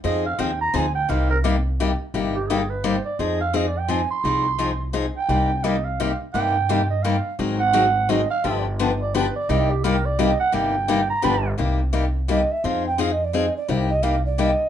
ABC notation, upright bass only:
X:1
M:3/4
L:1/8
Q:"Swing" 1/4=171
K:Cm
V:1 name="Upright bass" clef=bass
F,,2 E,,2 D,,2 | C,,6 | G,,,6 | F,,6 |
C,,6 | C,,6 | G,,6 | A,,,6 |
G,,,6 | C,,6 | G,,,4 G,,,2 | C,,6 |
F,,6 | C,,6 |]